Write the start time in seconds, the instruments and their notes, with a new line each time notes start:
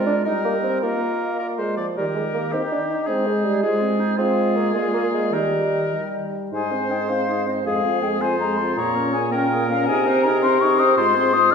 Already playing: french horn G#3, clarinet F4, oboe A#4, flute D5
0.06 bassoon D4
0.25 french horn G3, bassoon D#4, clarinet D#4, oboe A#4, flute D#5
0.45 bassoon A#3
0.64 bassoon C4
0.81 bassoon A#3, french horn A#3, clarinet F4, oboe A#4, flute D#5
1.39 clarinet F4, oboe A#4, flute D5
1.59 bassoon G#3, oboe C5
1.77 bassoon F3, oboe D5
1.97 french horn D#3, bassoon G3, clarinet G4, oboe A#4, flute D#5
2.15 bassoon G#3
2.34 bassoon A#3
2.52 bassoon C4, french horn D#4, clarinet D#4, oboe G4
2.72 bassoon D4
2.90 bassoon D#4
3.06 french horn G#3, bassoon C4, clarinet D#4, oboe G#4, flute C5
3.26 bassoon G#3
3.45 bassoon G3
3.63 bassoon G#3, french horn G#3, clarinet F4, oboe G#4, flute C5
3.81 clarinet C4
3.99 clarinet D#4
4.18 french horn G#3, bassoon C4, clarinet F4, oboe G#4, flute F5
4.55 bassoon A#3
4.74 bassoon G#3, french horn A#3, clarinet F4, flute D5
4.94 bassoon A#3
5.14 bassoon G#3
5.33 french horn D#3, bassoon G3, clarinet D#4, oboe A#4, flute D#5
5.94 french horn G3
6.51 bassoon G#2, french horn D#4, clarinet G#4, oboe C5, flute G#5
6.71 french horn C4, clarinet C5
6.90 french horn D#4, clarinet G#4, flute G5
7.09 french horn C4, clarinet C5, flute F5
7.28 french horn D#4, clarinet G#4
7.46 french horn C4, clarinet C5, flute D#5
7.65 bassoon F2, french horn G#3, oboe G#4, clarinet G#4, flute F5
7.84 french horn C4, clarinet F4
8.02 french horn G#3, clarinet G#4, flute G5
8.20 french horn C4, clarinet F4, oboe C5, flute G#5
8.39 french horn G#3, clarinet G#4, flute A#5
8.58 french horn C4, clarinet F4, flute C6
8.76 bassoon A#2, french horn A#3, clarinet G#4, oboe C#5, flute A#5
8.95 french horn C#4, clarinet A#4
9.13 french horn A#3, clarinet G#4, flute G#5
9.32 french horn C#4, clarinet A#4, oboe A#4, flute G5
9.51 french horn A#3, clarinet G#4
9.70 french horn C#4, clarinet A#4, flute F5
9.86 bassoon C3, french horn D#4, clarinet G#4, flute G#5
10.07 french horn C4, clarinet C5
10.23 french horn D#4, clarinet G#4, flute A#5
10.43 french horn C4, clarinet C5, flute C6
10.61 french horn D#4, clarinet G#4, flute C#6
10.79 french horn C4, clarinet C5, flute D#6
10.97 bassoon G#2, french horn G#3, clarinet F4, oboe C5, flute C6
11.15 french horn C4, clarinet G#4
11.33 french horn G#3, clarinet F4, flute D#6
11.51 flute F6